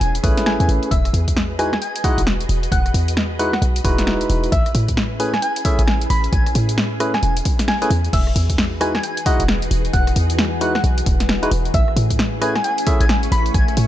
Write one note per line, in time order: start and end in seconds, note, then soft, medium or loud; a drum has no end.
0.00 0.20 E1 loud
0.00 0.88 C#4 medium
0.00 0.88 E4 medium
0.00 4.48 G#4 medium
0.00 8.09 B4 medium
0.00 0.10 G#5 medium
0.00 closed hi-hat medium
0.15 closed hi-hat medium
0.23 0.59 A1 medium
0.23 0.90 A3 medium
0.23 0.90 C#4 medium
0.23 0.90 E4 medium
0.23 0.90 G#4 medium
0.23 0.90 B4 loud
0.23 kick loud
0.23 open hi-hat medium
0.37 snare medium
0.37 closed hi-hat medium
0.46 0.55 G#5 medium
0.46 snare loud
0.60 0.67 E2 medium
0.60 0.65 G#5 medium
0.60 closed hi-hat medium
0.68 0.79 A1 loud
0.68 open hi-hat medium
0.83 closed hi-hat soft
0.91 1.10 E1 loud
0.91 4.49 F#4 medium
0.91 4.49 D#5 medium
0.91 1.08 E5 medium
0.91 kick loud
0.91 closed hi-hat medium
1.05 cross-stick soft
1.05 closed hi-hat soft
1.13 1.78 E2 medium
1.13 open hi-hat loud
1.28 kick medium
1.28 closed hi-hat medium
1.37 snare loud
1.59 1.71 G#3 medium
1.59 1.71 D#4 medium
1.59 1.71 E4 medium
1.59 1.71 F#4 medium
1.59 1.71 B4 medium
1.59 1.68 G#5 medium
1.59 cross-stick medium
1.59 open hi-hat medium
1.73 1.78 G#5 medium
1.73 cross-stick soft
1.73 snare medium
1.82 2.02 G#5 loud
1.82 closed hi-hat medium
1.96 closed hi-hat medium
2.04 2.21 G#3 medium
2.04 2.21 D#4 medium
2.04 2.21 E4 medium
2.04 2.21 F#4 medium
2.04 2.21 D#5 loud
2.04 2.21 F#5 medium
2.04 kick loud
2.04 open hi-hat loud
2.18 2.46 E1 medium
2.18 closed hi-hat medium
2.27 snare loud
2.41 closed hi-hat medium
2.49 2.68 E1 loud
2.49 open hi-hat medium
2.63 closed hi-hat soft
2.72 2.90 E1 loud
2.72 2.89 F#5 medium
2.72 kick loud
2.72 closed hi-hat medium
2.86 cross-stick soft
2.86 closed hi-hat soft
2.94 3.59 E2 medium
2.94 open hi-hat loud
3.08 closed hi-hat medium
3.17 snare loud
3.39 3.51 G#3 medium
3.39 3.51 D#4 medium
3.39 3.51 E4 medium
3.39 3.51 F#4 medium
3.39 3.51 B4 medium
3.39 3.48 F#5 medium
3.39 open hi-hat medium
3.53 3.59 F#5 medium
3.53 cross-stick medium
3.53 snare medium
3.62 3.81 B1 loud
3.62 closed hi-hat medium
3.76 closed hi-hat medium
3.85 4.27 E1 medium
3.85 4.51 G#3 medium
3.85 4.51 D#4 medium
3.85 4.51 E4 medium
3.85 4.51 F#4 medium
3.85 4.51 B4 loud
3.85 kick loud
3.85 open hi-hat loud
3.98 snare medium
3.98 closed hi-hat medium
4.07 snare loud
4.21 closed hi-hat medium
4.30 4.48 E1 loud
4.30 open hi-hat medium
4.44 closed hi-hat soft
4.52 4.71 A1 loud
4.52 8.10 C#4 medium
4.52 8.09 E4 medium
4.52 8.09 G#4 medium
4.52 4.69 E5 medium
4.52 kick loud
4.52 closed hi-hat medium
4.66 cross-stick soft
4.66 closed hi-hat soft
4.75 5.39 A2 medium
4.75 open hi-hat loud
4.88 kick medium
4.88 closed hi-hat medium
4.97 snare loud
5.20 5.31 A3 medium
5.20 5.31 C#4 medium
5.20 5.31 E4 medium
5.20 5.31 G#4 medium
5.20 5.31 B4 medium
5.20 5.29 G#5 medium
5.20 open hi-hat medium
5.34 5.39 G#5 medium
5.34 cross-stick medium
5.34 snare medium
5.42 5.63 G#5 medium
5.42 closed hi-hat medium
5.56 closed hi-hat medium
5.65 5.82 A3 medium
5.65 5.82 C#4 medium
5.65 5.82 E4 medium
5.65 5.82 G#4 medium
5.65 5.82 E5 loud
5.65 kick loud
5.65 open hi-hat loud
5.79 6.07 A1 medium
5.79 5.92 G#5 medium
5.79 closed hi-hat medium
5.88 snare loud
6.01 closed hi-hat medium
6.10 6.29 A1 loud
6.10 6.27 B5 medium
6.10 open hi-hat medium
6.24 closed hi-hat soft
6.33 6.51 A1 loud
6.33 6.49 G#5 medium
6.33 kick loud
6.33 closed hi-hat medium
6.46 cross-stick soft
6.46 closed hi-hat soft
6.55 7.20 A2 medium
6.55 open hi-hat loud
6.69 closed hi-hat medium
6.78 snare loud
7.00 7.12 A3 medium
7.00 7.12 C#4 medium
7.00 7.12 E4 medium
7.00 7.12 G#4 medium
7.00 7.12 B4 medium
7.00 cross-stick medium
7.00 open hi-hat loud
7.14 7.20 G#5 medium
7.14 cross-stick medium
7.14 snare medium
7.23 7.41 E1 loud
7.23 7.32 G#5 medium
7.23 closed hi-hat medium
7.37 closed hi-hat medium
7.45 kick loud
7.45 open hi-hat loud
7.59 snare medium
7.59 closed hi-hat medium
7.68 7.77 G#5 medium
7.68 snare loud
7.82 7.89 A3 medium
7.82 7.89 C#4 medium
7.82 7.89 E4 medium
7.82 7.89 G#4 medium
7.82 7.89 B4 loud
7.82 7.87 G#5 medium
7.82 closed hi-hat medium
7.90 8.09 E2 medium
7.90 open hi-hat medium
8.04 closed hi-hat soft
8.13 8.32 E1 loud
8.13 13.17 E3 medium
8.13 11.70 D#4 medium
8.13 11.70 F#4 medium
8.13 11.70 G#4 medium
8.13 11.70 B4 medium
8.13 8.30 E5 medium
8.13 kick loud
8.13 closed hi-hat medium
8.13 crash loud
8.27 cross-stick soft
8.36 9.00 E2 medium
8.36 open hi-hat loud
8.50 kick medium
8.50 closed hi-hat medium
8.58 13.18 B4 medium
8.58 snare loud
8.64 12.82 G#5 medium
8.81 8.92 G#3 medium
8.81 8.92 D#4 medium
8.81 8.92 E4 medium
8.81 8.92 F#4 medium
8.81 8.92 B4 medium
8.81 8.90 G#5 medium
8.81 cross-stick medium
8.81 open hi-hat loud
8.93 13.20 F#5 medium
8.93 9.00 G#5 medium
8.93 cross-stick medium
8.93 snare medium
9.03 9.24 G#5 medium
9.03 closed hi-hat medium
9.17 closed hi-hat medium
9.26 9.43 G#3 medium
9.26 9.43 D#4 medium
9.26 9.43 E4 medium
9.26 9.43 F#4 medium
9.26 9.43 D#5 loud
9.26 9.43 F#5 medium
9.26 kick loud
9.26 open hi-hat loud
9.40 9.68 E1 medium
9.40 closed hi-hat medium
9.48 snare loud
9.62 closed hi-hat medium
9.71 9.90 E1 loud
9.71 open hi-hat medium
9.85 closed hi-hat soft
9.93 10.12 E1 loud
9.93 10.10 F#5 medium
9.93 kick loud
9.93 closed hi-hat medium
10.07 cross-stick soft
10.07 closed hi-hat soft
10.16 10.81 E2 medium
10.16 open hi-hat loud
10.30 closed hi-hat medium
10.39 snare loud
10.61 10.73 G#3 medium
10.61 10.73 D#4 medium
10.61 10.73 E4 medium
10.61 10.73 F#4 medium
10.61 10.73 B4 medium
10.61 10.70 F#5 medium
10.61 open hi-hat medium
10.75 10.81 F#5 medium
10.75 cross-stick medium
10.75 snare medium
10.84 11.02 B1 loud
10.84 closed hi-hat medium
10.98 closed hi-hat medium
11.06 11.48 E1 medium
11.06 kick loud
11.06 open hi-hat loud
11.20 snare medium
11.20 closed hi-hat medium
11.29 snare loud
11.43 11.50 G#3 medium
11.43 11.50 D#4 medium
11.43 11.50 E4 medium
11.43 11.50 F#4 medium
11.43 11.50 B4 loud
11.43 closed hi-hat medium
11.51 11.70 E1 loud
11.51 open hi-hat medium
11.65 closed hi-hat soft
11.74 11.93 A1 loud
11.74 13.87 A3 medium
11.74 13.87 C#4 medium
11.74 13.87 E4 medium
11.74 13.53 G#4 medium
11.74 13.87 B4 medium
11.74 11.91 E5 medium
11.74 kick loud
11.74 closed hi-hat medium
11.88 cross-stick soft
11.93 12.61 A2 medium
11.93 13.87 C#6 medium
11.97 open hi-hat loud
12.09 13.87 E5 medium
12.09 kick medium
12.09 closed hi-hat medium
12.19 snare loud
12.42 12.53 A3 medium
12.42 12.53 C#4 medium
12.42 12.53 E4 medium
12.42 12.53 G#4 medium
12.42 12.53 B4 medium
12.42 12.51 G#5 medium
12.42 cross-stick medium
12.42 open hi-hat medium
12.55 12.61 G#5 medium
12.55 13.87 B5 medium
12.55 cross-stick medium
12.55 snare medium
12.64 12.85 G#5 medium
12.64 closed hi-hat medium
12.78 closed hi-hat medium
12.87 13.04 A3 medium
12.87 13.04 C#4 medium
12.87 13.04 E4 medium
12.87 13.04 G#4 medium
12.87 13.04 E5 loud
12.87 kick loud
12.87 open hi-hat loud
13.00 13.29 A1 medium
13.00 13.14 G#5 medium
13.00 closed hi-hat medium
13.09 snare loud
13.23 closed hi-hat medium
13.32 13.50 A1 loud
13.32 13.49 B5 medium
13.32 open hi-hat medium
13.46 closed hi-hat soft
13.54 13.73 A1 loud
13.54 13.87 A4 medium
13.54 13.71 G#5 medium
13.54 kick loud
13.54 closed hi-hat medium
13.68 cross-stick soft
13.68 closed hi-hat soft
13.77 13.87 A2 medium
13.77 open hi-hat loud